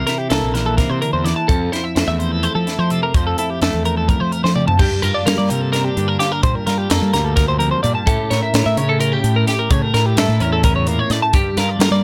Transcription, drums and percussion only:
0.07 snare, closed hi-hat
0.30 snare, closed hi-hat
0.55 snare, closed hi-hat
0.78 kick, snare, closed hi-hat
1.02 closed hi-hat
1.26 snare, closed hi-hat
1.49 kick, closed hi-hat
1.73 snare, closed hi-hat
1.96 snare, closed hi-hat
2.20 closed hi-hat
2.43 closed hi-hat
2.67 snare, closed hi-hat
2.90 closed hi-hat
3.14 kick, closed hi-hat
3.38 closed hi-hat
3.62 snare, closed hi-hat
3.85 closed hi-hat
4.09 kick, closed hi-hat
4.32 closed hi-hat
4.45 snare
4.56 mid tom
4.68 floor tom
4.79 kick, crash
5.03 closed hi-hat
5.27 snare, closed hi-hat
5.50 closed hi-hat
5.73 snare, closed hi-hat
5.97 closed hi-hat
6.20 snare, closed hi-hat
6.43 kick, closed hi-hat
6.67 snare, closed hi-hat
6.90 snare, closed hi-hat
7.14 snare, closed hi-hat
7.37 kick, snare, closed hi-hat
7.60 closed hi-hat
7.84 closed hi-hat
8.07 kick, closed hi-hat
8.31 snare, closed hi-hat
8.54 snare, closed hi-hat
8.77 closed hi-hat
9.01 closed hi-hat
9.24 closed hi-hat
9.47 snare, closed hi-hat
9.71 kick, closed hi-hat
9.94 snare, closed hi-hat
10.17 snare, closed hi-hat
10.40 closed hi-hat
10.63 kick, closed hi-hat
10.87 closed hi-hat
11.10 snare, closed hi-hat
11.33 kick, closed hi-hat
11.57 snare, closed hi-hat
11.80 snare, closed hi-hat

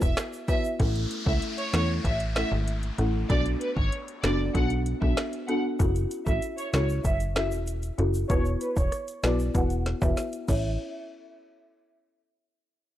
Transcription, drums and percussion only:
0.02 kick, shaker
0.17 finger snap, cross-stick, snare, closed hi-hat, shaker
0.33 shaker
0.48 kick, closed hi-hat, high timbale, shaker
0.64 shaker
0.80 kick, closed hi-hat
0.96 closed hi-hat
1.11 closed hi-hat
1.27 kick
1.42 closed hi-hat
1.58 closed hi-hat
1.73 finger snap, snare, closed hi-hat
2.05 kick, closed hi-hat
2.20 closed hi-hat
2.36 finger snap, snare, closed hi-hat
2.68 closed hi-hat
2.83 closed hi-hat
2.98 closed hi-hat
3.30 kick, closed hi-hat
3.46 closed hi-hat
3.61 closed hi-hat
3.77 kick
3.92 closed hi-hat
4.08 closed hi-hat
4.24 finger snap, snare, closed hi-hat
4.55 kick, closed hi-hat
4.70 closed hi-hat
4.86 closed hi-hat
5.02 kick
5.17 finger snap, snare, closed hi-hat
5.33 closed hi-hat
5.48 closed hi-hat
5.80 kick, closed hi-hat, shaker
5.95 closed hi-hat, shaker
6.11 closed hi-hat, shaker
6.27 kick, shaker
6.42 closed hi-hat, shaker
6.58 closed hi-hat, shaker
6.74 finger snap, snare, closed hi-hat, shaker
6.89 shaker
7.05 kick, closed hi-hat, shaker
7.20 closed hi-hat, shaker
7.36 finger snap, snare, closed hi-hat
7.52 shaker
7.67 closed hi-hat, shaker
7.83 closed hi-hat, shaker
7.99 closed hi-hat
8.14 shaker
8.30 kick, closed hi-hat, shaker
8.45 shaker
8.61 closed hi-hat, shaker
8.77 kick, shaker
8.92 cross-stick, closed hi-hat, shaker
9.08 closed hi-hat, shaker
9.23 finger snap, snare, closed hi-hat, shaker
9.39 shaker
9.55 kick, closed hi-hat, shaker
9.70 closed hi-hat, shaker
9.86 snare, closed hi-hat
10.02 kick, high timbale, shaker
10.17 snare, closed hi-hat, shaker
10.33 closed hi-hat, shaker
10.48 kick, crash, shaker

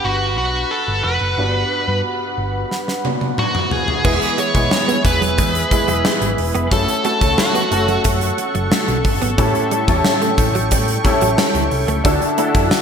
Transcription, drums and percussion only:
2.71 snare
2.88 snare
3.05 high tom
3.21 high tom
3.38 mid tom
3.55 mid tom
3.71 floor tom
3.88 floor tom
4.05 kick, crash
4.22 closed hi-hat
4.38 closed hi-hat
4.55 kick, closed hi-hat
4.71 snare
4.89 closed hi-hat
5.05 kick, closed hi-hat
5.22 closed hi-hat
5.38 kick, closed hi-hat
5.55 closed hi-hat
5.71 kick, closed hi-hat
5.88 closed hi-hat
6.05 snare
6.22 closed hi-hat
6.38 open hi-hat
6.55 closed hi-hat
6.71 kick, closed hi-hat
6.88 closed hi-hat
7.05 closed hi-hat
7.21 kick, closed hi-hat
7.38 snare
7.55 closed hi-hat
7.72 closed hi-hat
7.88 closed hi-hat
8.04 kick, closed hi-hat
8.21 closed hi-hat
8.38 closed hi-hat
8.55 closed hi-hat
8.72 snare
8.88 closed hi-hat
9.05 kick, open hi-hat
9.22 closed hi-hat
9.38 kick, closed hi-hat
9.55 closed hi-hat
9.71 closed hi-hat
9.88 kick, closed hi-hat
10.05 snare, tambourine
10.22 closed hi-hat
10.38 kick, closed hi-hat
10.55 closed hi-hat
10.71 kick, closed hi-hat
10.88 closed hi-hat
11.05 kick, closed hi-hat
11.21 closed hi-hat
11.38 snare, tambourine
11.55 closed hi-hat
11.71 open hi-hat
11.88 closed hi-hat
12.05 kick, closed hi-hat
12.22 closed hi-hat
12.38 closed hi-hat
12.55 kick, closed hi-hat
12.71 snare, tambourine

